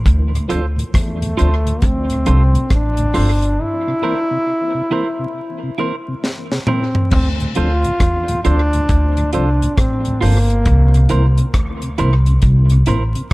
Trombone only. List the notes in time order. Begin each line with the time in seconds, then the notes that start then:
0.96 A3
1.85 C4
2.74 D4
3.62 E4
6.68 C4
7.12 C4
7.56 F4
8.44 D4
9.33 D4
9.78 C4
10.22 A#3